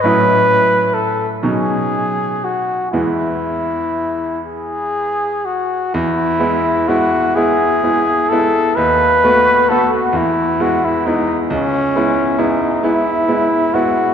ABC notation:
X:1
M:6/8
L:1/16
Q:3/8=43
K:E
V:1 name="Trumpet"
B4 A2 G4 F2 | E6 G4 F2 | E4 F2 G4 A2 | B4 A F E2 F E D2 |
C4 D2 E4 F2 |]
V:2 name="Grand piano"
[A,,F,CE]6 [B,,F,CD]6 | [E,,G,B,E]12 | E,,2 [G,B,E]2 [G,B,E]2 [G,B,E]2 [G,B,E]2 [G,B,E]2 | D,,2 [A,B,F]2 [A,B,F]2 E,,2 [G,B,E]2 [G,B,E]2 |
C,,2 [G,B,E]2 [G,B,E]2 [G,B,E]2 [G,B,E]2 [G,B,E]2 |]